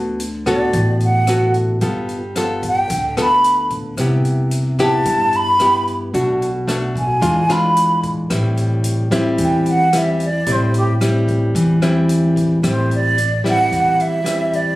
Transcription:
Already playing: upright bass D2, nylon-string guitar D3 B3 F#4 A4
0.20 closed hi-hat
0.46 nylon-string guitar B3 F#4 A4, flute D5, kick, cross-stick, closed hi-hat
0.73 upright bass A1, nylon-string guitar A2, kick, closed hi-hat
1.00 flute F#5, closed hi-hat
1.27 nylon-string guitar B3 F#4 A4, cross-stick, closed hi-hat
1.54 closed hi-hat
1.81 upright bass G1, nylon-string guitar G3 B3 F4 A4, kick, closed hi-hat
2.09 closed hi-hat
2.36 nylon-string guitar B3 F4 A4, cross-stick, closed hi-hat
2.63 kick, closed hi-hat
2.68 flute G5
2.90 upright bass D2, nylon-string guitar D3, kick, closed hi-hat
3.17 nylon-string guitar B3 F4 A4, cross-stick, closed hi-hat
3.21 flute B5
3.44 closed hi-hat
3.70 kick, closed hi-hat
3.97 upright bass C2, nylon-string guitar C3 B3 E4 G4, kick, cross-stick, closed hi-hat
4.25 closed hi-hat
4.51 closed hi-hat
4.79 nylon-string guitar B3 E4 G4, flute A5, kick, cross-stick, closed hi-hat
5.05 upright bass G2, nylon-string guitar G2, kick, closed hi-hat
5.33 flute B5, closed hi-hat
5.60 nylon-string guitar B3 E4 G4, cross-stick, closed hi-hat
5.87 closed hi-hat
6.14 upright bass B1, nylon-string guitar B2 A3 D4 F#4, kick, closed hi-hat
6.42 closed hi-hat
6.68 nylon-string guitar A3 D4 F#4, cross-stick, closed hi-hat
6.96 flute G#5, kick, closed hi-hat
7.21 upright bass E2, nylon-string guitar E3 G#3 D4 F4, kick, closed hi-hat
7.49 nylon-string guitar G#3 D4 F4, flute B5, cross-stick, closed hi-hat
7.77 closed hi-hat
8.03 kick, closed hi-hat
8.30 upright bass A1, nylon-string guitar A2 G3 C4 E4, kick, cross-stick, closed hi-hat
8.57 closed hi-hat
8.84 closed hi-hat
9.11 nylon-string guitar G3 C4 E4, kick, cross-stick, closed hi-hat
9.38 upright bass E2, nylon-string guitar E3, kick, closed hi-hat
9.43 flute G5
9.66 closed hi-hat
9.70 flute F#5
9.93 nylon-string guitar G3 C4 E4, cross-stick, closed hi-hat
9.98 flute E5
10.20 closed hi-hat
10.25 flute D5
10.46 upright bass A1, nylon-string guitar A2 G3 C4 E4, kick, closed hi-hat
10.52 flute C5
10.74 flute G4, closed hi-hat
11.01 nylon-string guitar G3 C4 E4, cross-stick, closed hi-hat
11.28 kick, closed hi-hat
11.55 upright bass E2, nylon-string guitar E3, kick, closed hi-hat
11.82 nylon-string guitar G3 C4 E4, cross-stick, closed hi-hat
12.09 closed hi-hat
12.36 kick, closed hi-hat
12.63 upright bass A1, nylon-string guitar A2 G3 C4 E4, kick, cross-stick, closed hi-hat
12.68 flute C5
12.91 closed hi-hat
12.95 flute D5
13.18 closed hi-hat
13.44 nylon-string guitar G3 C4 E4, kick, cross-stick, closed hi-hat
13.49 flute F#5
13.71 upright bass E2, nylon-string guitar E3, kick, closed hi-hat
13.75 flute F#5
14.00 flute E5, closed hi-hat
14.24 nylon-string guitar G3 C4 E4, cross-stick, closed hi-hat
14.53 flute D5, kick, closed hi-hat

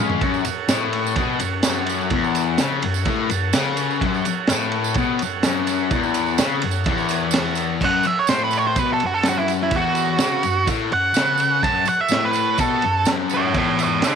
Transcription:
Already playing: transistor combo organ G#4 C#5 F5
0.00 distorted electric guitar C#3 G#3 C#4
0.10 floor tom
0.21 distorted electric guitar F#2, transistor combo organ A4 C#5 F#5, kick, ride
0.34 tambourine
0.45 muted distorted electric guitar stroke, ride, tambourine
0.68 distorted electric guitar A2, snare, ride, tambourine
0.93 ride
1.07 tambourine
1.16 distorted electric guitar B2, kick, ride, tambourine
1.40 distorted electric guitar F#2, ride, tambourine
1.63 distorted electric guitar F#2, snare, ride, tambourine
1.86 ride, tambourine
2.01 tambourine
2.10 distorted electric guitar E2, kick, ride
2.24 tambourine
2.35 ride, tambourine
2.58 distorted electric guitar C#3, snare, ride, tambourine
2.82 distorted electric guitar F#2, ride
2.94 tambourine
3.05 distorted electric guitar A2, kick, ride
3.30 distorted electric guitar F#2, transistor combo organ A5, ride, tambourine
3.53 distorted electric guitar C#3, transistor combo organ F#5, snare, ride, tambourine
3.77 transistor combo organ F#5, ride, tambourine
3.90 tambourine
3.99 distorted electric guitar F#2, transistor combo organ A4 C#5 F#5, kick, ride
4.14 tambourine
4.25 muted distorted electric guitar stroke, ride, tambourine
4.47 distorted electric guitar A2, snare, ride, tambourine
4.72 ride
4.84 tambourine
4.94 distorted electric guitar B2, kick, ride, tambourine
5.19 ride, tambourine
5.23 distorted electric guitar F#2
5.43 distorted electric guitar F#2, snare, ride, tambourine
5.67 ride, tambourine
5.78 tambourine
5.91 distorted electric guitar E2, kick, ride, tambourine
6.03 tambourine
6.14 ride, tambourine
6.26 tambourine
6.38 distorted electric guitar C#3, snare, ride, tambourine
6.61 distorted electric guitar F#2, ride, tambourine
6.71 tambourine
6.84 distorted electric guitar E2, kick, ride, tambourine
6.98 tambourine
7.08 transistor combo organ G#5, ride, tambourine
7.31 transistor combo organ F#5, snare, ride, tambourine
7.55 transistor combo organ E5, ride, tambourine
7.80 distorted electric guitar F#2, transistor combo organ A4 C#5 F#5, kick, crash, tambourine
7.85 lead electric guitar F#5
8.03 lead electric guitar E5, muted distorted electric guitar stroke, ride, tambourine
8.19 lead electric guitar C#5
8.27 distorted electric guitar A2, lead electric guitar C5, snare, ride, tambourine
8.44 lead electric guitar B4
8.51 ride, tambourine
8.57 lead electric guitar C#5
8.67 lead electric guitar C5
8.76 distorted electric guitar B2, lead electric guitar B4, kick, ride, tambourine
8.94 lead electric guitar A4
9.00 distorted electric guitar F#2, ride
9.06 lead electric guitar F#4
9.14 lead electric guitar A4
9.23 distorted electric guitar F#2, snare, ride, tambourine
9.29 lead electric guitar F#4
9.38 lead electric guitar E4
9.48 ride, tambourine
9.63 lead electric guitar E4
9.71 distorted electric guitar E2, kick, ride, tambourine
9.76 lead electric guitar F#4
9.95 ride, tambourine
10.18 distorted electric guitar C#3, snare, ride, tambourine
10.43 distorted electric guitar F#2, ride, tambourine
10.67 distorted electric guitar A2, kick, ride, tambourine
10.91 distorted electric guitar F#2, lead electric guitar F#5, ride
11.14 distorted electric guitar C#3, snare, ride, tambourine
11.38 ride, tambourine
11.63 distorted electric guitar F#2, transistor combo organ A4 C#5 F#5, lead electric guitar A5, kick, ride, tambourine
11.85 lead electric guitar F#5, muted distorted electric guitar stroke, ride, tambourine
12.01 lead electric guitar E5
12.08 distorted electric guitar A2, snare, ride, tambourine
12.25 lead electric guitar B4
12.33 ride, tambourine
12.58 distorted electric guitar B2, lead electric guitar A4, kick, ride, tambourine
12.82 distorted electric guitar F#2, ride
13.05 distorted electric guitar F#2, snare, ride, tambourine
13.30 ride, tambourine
13.34 lead electric guitar C#5 E5
13.54 distorted electric guitar E2, lead electric guitar E5, kick, ride
13.58 lead electric guitar C#5
13.79 ride, tambourine
13.83 lead electric guitar C#5 E5
14.02 distorted electric guitar C#3, snare, ride, tambourine
14.07 lead electric guitar A4 F#5

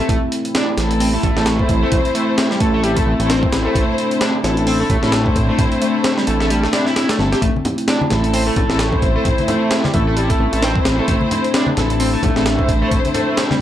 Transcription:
Already playing: analog synth pad A3 C4
0.09 analog synth bass A1, analog synth lead A3, analog synth pad E4, kick, closed hi-hat
0.32 closed hi-hat
0.45 closed hi-hat
0.55 analog synth lead D4, snare, closed hi-hat
0.77 analog synth bass A1, string section A3 C4 E4 A4, snare, closed hi-hat
0.91 closed hi-hat
1.00 analog synth lead C4, open hi-hat
1.13 analog synth lead A3
1.23 analog synth bass A1, analog synth lead A3, kick, closed hi-hat
1.36 analog synth bass A1, string section A3 C4 E4 A4, snare
1.46 snare, closed hi-hat
1.59 string section A3 C4 E4 C5, kick
1.69 analog synth bass A1, kick, closed hi-hat
1.82 analog synth lead A3
1.92 analog synth bass A1, kick, closed hi-hat
2.05 closed hi-hat
2.15 analog synth lead A3, closed hi-hat
2.38 snare, closed hi-hat
2.51 analog synth lead G3, snare
2.60 analog synth bass A1, analog synth lead A3, string section A3 C4 E4 A4, kick, closed hi-hat
2.74 analog synth lead A3
2.83 analog synth lead G3, closed hi-hat
2.97 analog synth lead A3, kick, closed hi-hat
3.06 analog synth bass A1
3.20 analog synth bass A1, analog synth lead A3, string section A3 C4 E4 A4, closed hi-hat
3.29 analog synth lead C4, snare, closed hi-hat
3.43 string section A3 C4 E4 C5, kick
3.52 analog synth bass A1, snare, closed hi-hat
3.65 analog synth lead A3
3.75 analog synth bass A1, analog synth lead A3, analog synth pad D4, kick, closed hi-hat
3.98 closed hi-hat
4.11 closed hi-hat
4.21 analog synth lead D4, snare, closed hi-hat
4.44 analog synth bass A1, string section A3 C4 E4 A4, snare, closed hi-hat
4.57 closed hi-hat
4.67 analog synth lead C4, open hi-hat
4.80 analog synth lead A3
4.90 analog synth bass A1, analog synth lead A3, kick, closed hi-hat
5.03 analog synth bass A1, string section A3 C4 E4 A4, snare
5.12 snare, closed hi-hat
5.26 string section A3 C4 E4 C5, kick
5.36 analog synth bass A1, kick, closed hi-hat
5.49 analog synth lead A3
5.59 analog synth bass A1, kick, closed hi-hat
5.72 closed hi-hat
5.82 analog synth lead A3, closed hi-hat
6.04 snare, closed hi-hat
6.17 analog synth lead G3, snare
6.27 analog synth bass A1, analog synth lead A3, string section A3 C4 E4 A4, closed hi-hat
6.40 analog synth lead A3, snare
6.50 analog synth lead G3, closed hi-hat
6.63 analog synth lead A3, snare
6.73 string section A3 C4 E4 G4, analog synth lead D4, snare, closed hi-hat
6.86 analog synth lead E4, snare
6.96 analog synth lead E4, snare, closed hi-hat
7.09 analog synth lead A3, snare, closed hi-hat
7.19 analog synth bass G1, string section A3 C4 E4 A4, snare
7.32 analog synth lead G4, snare, closed hi-hat
7.41 analog synth bass A1, analog synth lead A3, analog synth pad E4, kick, closed hi-hat
7.56 high conga
7.65 closed hi-hat, low conga
7.78 closed hi-hat
7.88 analog synth lead D4, snare, closed hi-hat
8.01 high conga
8.10 analog synth bass A1, string section A3 C4 E4 A4, snare, closed hi-hat, low conga
8.24 closed hi-hat
8.34 analog synth lead C4, open hi-hat
8.47 analog synth lead A3
8.56 analog synth bass A1, analog synth lead A3, kick, closed hi-hat, low conga
8.70 analog synth bass A1, string section A3 C4 E4 A4, snare
8.79 snare, closed hi-hat
8.93 string section A3 C4 E4 C5, kick
9.02 analog synth bass A1, kick, closed hi-hat
9.16 analog synth lead A3
9.25 analog synth bass A1, kick, closed hi-hat
9.38 closed hi-hat, high conga
9.48 analog synth lead A3, closed hi-hat, low conga
9.71 snare, closed hi-hat
9.84 analog synth lead G3, snare, high conga
9.94 analog synth bass A1, analog synth lead A3, string section A3 C4 E4 A4, kick, closed hi-hat, low conga
10.07 analog synth lead A3
10.17 analog synth lead G3, closed hi-hat
10.30 analog synth lead A3, kick, closed hi-hat
10.39 analog synth bass A1
10.52 analog synth bass A1, string section A3 C4 E4 A4, analog synth lead A3, closed hi-hat
10.62 analog synth lead C4, snare, closed hi-hat
10.75 string section A3 C4 E4 C5, kick
10.85 analog synth bass A1, snare, closed hi-hat
10.99 analog synth lead A3
11.08 analog synth bass A1, analog synth lead A3, analog synth pad D4, kick, closed hi-hat
11.21 high conga
11.31 closed hi-hat, low conga
11.44 closed hi-hat
11.54 analog synth lead D4, snare, closed hi-hat
11.67 high conga
11.77 analog synth bass A1, string section A3 C4 E4 A4, snare, closed hi-hat, low conga
11.90 closed hi-hat
12.00 analog synth lead C4, open hi-hat
12.13 analog synth lead A3
12.23 analog synth bass A1, analog synth lead A3, kick, closed hi-hat, low conga
12.36 analog synth bass A1, string section A3 C4 E4 A4, snare
12.46 snare, closed hi-hat
12.59 string section A3 C4 E4 C5, kick
12.68 analog synth bass A1, kick, closed hi-hat
12.82 analog synth lead A3
12.91 analog synth bass A1, kick, closed hi-hat
13.05 closed hi-hat, high conga
13.14 analog synth lead A3, closed hi-hat, low conga
13.37 snare, closed hi-hat
13.50 analog synth lead G3, snare, high conga

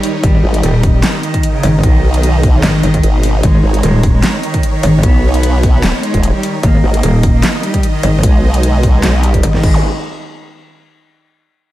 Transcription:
Already playing: supersaw synth D#3 D#4 C#5, cello G3
0.03 open hi-hat
0.23 wobble bass G#1, cello G3, supersaw synth D#5, kick, closed hi-hat
0.43 wobble bass G#1
0.54 cello G3, closed hi-hat
0.63 wobble bass D#1, closed hi-hat
0.83 kick, open hi-hat
0.94 cello G3
1.03 snare, clap, closed hi-hat
1.23 cello D#3, closed hi-hat
1.34 kick, closed hi-hat
1.43 closed hi-hat
1.54 cello C#3
1.63 wobble bass G#1, open hi-hat
1.83 wobble bass B1, cello D#3, kick, closed hi-hat
2.14 cello D#3, closed hi-hat
2.23 closed hi-hat
2.43 kick, open hi-hat
2.54 cello D#3
2.63 wobble bass G#1, snare, clap, closed hi-hat
2.83 wobble bass G#1, cello D#3, closed hi-hat
2.94 kick, closed hi-hat
3.03 wobble bass G#1, closed hi-hat
3.14 cello B2
3.23 open hi-hat
3.43 wobble bass G#1, cello G#3, supersaw synth C#5, kick, closed hi-hat
3.64 wobble bass G#1
3.74 cello G#3, closed hi-hat
3.83 wobble bass D#1, closed hi-hat
4.03 kick, open hi-hat
4.14 cello G#3
4.23 snare, clap, closed hi-hat
4.43 cello D#3, closed hi-hat
4.54 kick, closed hi-hat
4.63 closed hi-hat
4.74 cello D#3
4.83 wobble bass G#1, open hi-hat
5.03 wobble bass B1, cello B3, kick, closed hi-hat
5.34 cello B3, closed hi-hat
5.43 closed hi-hat
5.63 kick, open hi-hat
5.74 cello B3
5.83 wobble bass D#1, snare, clap, closed hi-hat
6.03 cello G#3, closed hi-hat
6.14 wobble bass D#1, kick, closed hi-hat
6.23 closed hi-hat
6.34 cello G3
6.43 open hi-hat
6.63 wobble bass G#1, cello A#3, supersaw synth D#5, kick, closed hi-hat
6.83 wobble bass G#1
6.94 cello A#3, closed hi-hat
7.03 wobble bass D#1, closed hi-hat
7.23 kick, open hi-hat
7.34 cello A#3
7.43 snare, clap, closed hi-hat
7.63 cello G3, closed hi-hat
7.74 kick, closed hi-hat
7.83 closed hi-hat
7.94 cello D#3
8.03 wobble bass G#1, open hi-hat
8.23 wobble bass B1, cello G#3, kick, closed hi-hat
8.54 cello G#3, closed hi-hat
8.63 closed hi-hat
8.83 kick, open hi-hat
8.94 cello G#3
9.03 wobble bass B1, snare, clap, closed hi-hat
9.23 cello G3, closed hi-hat
9.34 kick, closed hi-hat
9.43 wobble bass G#1, closed hi-hat
9.54 cello D#3, snare
9.63 wobble bass G#1, cello D#3, supersaw synth G#3 G#4 B4 D#5, kick, crash
9.74 zap

